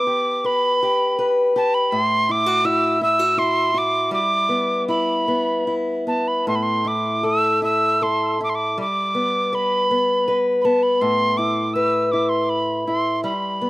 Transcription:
Already playing: B3 D6
0.07 G4
0.44 B4 B5
0.83 G4
1.19 B4
1.56 G4 A5
1.74 B5
1.91 A2 C6
2.29 E4 D6
2.46 F#4
2.64 E4 E6
3.01 E4 E6
3.19 F#4
3.37 E4 C6
3.74 F#4 D6
4.11 G3 D6
4.49 B3
4.88 E4 B5
5.28 B3
5.67 E4
6.07 B3 A5
6.28 B5
6.47 A2 C6
6.55 B5
6.63 C6
6.85 E4 D6
7.23 A4 E6
7.62 E4 E6
8.02 A4 C6
8.40 E4 D6
8.49 C6
8.55 D6
8.78 G3 D6
9.15 B3
9.53 B4 B5
9.91 B3
10.28 B4
10.61 B3 A5 B5
10.83 B5
11.01 A2 C6
11.37 E4 D6
11.74 B4 E6
12.12 E4 D6
12.29 C6
12.49 B5
12.87 E4 C6
13.24 G3 B5
13.61 B3

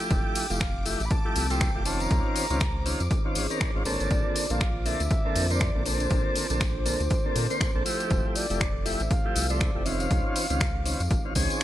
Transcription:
Already playing: F3 A3 E4 G4 A4 D6
0.00 closed hi-hat, tambourine
0.11 F1 C4 G4 C5 G5, kick, closed hi-hat, tambourine
0.35 open hi-hat, tambourine
0.50 F1 F3 A3 E4 G4 F5, closed hi-hat, tambourine
0.61 finger snap, kick, closed hi-hat
0.85 F3 A3 E4 G4 E5, open hi-hat, tambourine
1.00 A1, closed hi-hat, tambourine
1.05 B5
1.11 A5, kick, closed hi-hat, tambourine
1.25 F3 A3 E4 G4
1.36 C2, open hi-hat, tambourine
1.50 F3 A3 E4 C5 G5, closed hi-hat, tambourine
1.61 finger snap, kick, closed hi-hat, tambourine
1.75 F1 F3 A3 E4 G4
1.85 D#3 C4 C#4 F4 A5, open hi-hat, tambourine
2.00 A#5, closed hi-hat, tambourine
2.11 C#2 D#4 F4 G#4, kick, closed hi-hat, tambourine
2.36 open hi-hat, tambourine
2.50 C#2 D#3 C4 C#4 F4, closed hi-hat, tambourine
2.60 finger snap, kick, closed hi-hat, tambourine
2.85 D#3 C4 C#4 F4, open hi-hat, tambourine
3.00 F2, closed hi-hat, tambourine
3.11 kick, closed hi-hat, tambourine
3.25 D#3 C4 C#4 F4
3.35 G#1, open hi-hat, tambourine
3.50 D#3 C4 C#4 A#4, closed hi-hat, tambourine
3.61 finger snap, kick, closed hi-hat
3.75 G#1 D#3 C4 C#4 F4
3.85 G#1 D3 A#3 C4 A4 C#5, open hi-hat, tambourine
4.00 G#1, closed hi-hat, tambourine
4.11 A#1 D4 A4 C5 D5, kick, closed hi-hat, tambourine
4.36 open hi-hat, tambourine
4.50 A#1 D3 A#3 C4 A4 F5, closed hi-hat, tambourine
4.61 finger snap, kick, closed hi-hat
4.85 D3 A#3 C4 A4 E5, open hi-hat, tambourine
5.00 D2, closed hi-hat, tambourine
5.11 kick, closed hi-hat, tambourine
5.25 D3 A#3 C4 A4
5.36 F2, open hi-hat, tambourine
5.50 D3 A#3 C4 C5 D5, closed hi-hat, tambourine
5.61 finger snap, kick, closed hi-hat
5.75 A#1 D3 A#3 C4 A4
5.85 D3 A#3 C4 A4 C5, open hi-hat, tambourine
6.00 closed hi-hat, tambourine
6.11 A#1, kick, closed hi-hat, tambourine
6.36 open hi-hat, tambourine
6.50 A#1 D3 A#3 C4 A4, closed hi-hat, tambourine
6.61 finger snap, kick, closed hi-hat, tambourine
6.85 D3 A#3 C4 A4, open hi-hat, tambourine
7.00 D2, closed hi-hat, tambourine
7.10 kick, closed hi-hat, tambourine
7.25 D3 A#3 C4 A4
7.36 A#2, open hi-hat, tambourine
7.50 D3 A#3 C4 C5, closed hi-hat, tambourine
7.61 finger snap, kick, closed hi-hat, tambourine
7.75 A#1 D3 A#3 C4 A4
7.85 F3 A3 E4 G4 C5, open hi-hat, tambourine
8.00 closed hi-hat, tambourine
8.10 F1 C4 G4 C5, kick, closed hi-hat, tambourine
8.35 D5, open hi-hat, tambourine
8.50 F1 F3 A3 E4 G4, closed hi-hat, tambourine
8.61 finger snap, kick, closed hi-hat
8.85 F3 A3 E4 G4 E5, open hi-hat, tambourine
9.00 A1, closed hi-hat, tambourine
9.11 F5, kick, closed hi-hat, tambourine
9.25 F3 A3 E4 G4
9.36 C2, open hi-hat, tambourine
9.49 F3 A3 E4 C5 D5, closed hi-hat, tambourine
9.60 finger snap, kick, closed hi-hat, tambourine
9.75 F1 F3 A3 E4 G4
9.85 D#3 C4 C#4 F4 E5, open hi-hat, tambourine
10.00 F5, closed hi-hat, tambourine
10.11 C#2 D#4 F4 G#4, kick, closed hi-hat, tambourine
10.36 open hi-hat, tambourine
10.50 C#2 D#3 C4 C#4 F4, closed hi-hat, tambourine
10.60 finger snap, kick, closed hi-hat, tambourine
10.85 D#3 C4 C#4 F4, open hi-hat, tambourine
11.00 F2, closed hi-hat, tambourine
11.10 G#1, kick, closed hi-hat, tambourine
11.25 D#3 C4 C#4 F4
11.35 C#2 D#3 C4 C#4 G#4, kick, open hi-hat, tambourine
11.50 closed hi-hat, tambourine
11.61 closed hi-hat

